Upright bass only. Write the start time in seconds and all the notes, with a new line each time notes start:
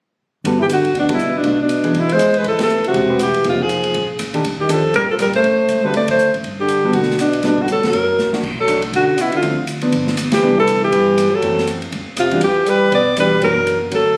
0.44 G1
0.84 muted upright bass stroke
0.94 D2
1.28 B1
1.36 A#1
1.45 B1
1.93 E2
2.44 A1
2.84 muted upright bass stroke
2.94 E1
3.34 muted upright bass stroke
3.44 F1
3.94 A#1
4.20 A#2
4.45 D#2
4.94 A#1
5.26 D#2
5.35 E2
5.44 A1
5.69 C#2
5.94 D2
6.33 A1
6.44 G1
6.93 B1
7.43 D2
7.76 A2
7.84 C#3
7.93 F#2
8.18 A#1
8.43 B1
8.93 F#1
9.43 D2
9.92 G1
10.42 C2
10.92 G2
11.32 muted upright bass stroke
11.42 F#2
11.92 F2
12.42 E2
12.92 B1
13.42 F#1
13.91 D2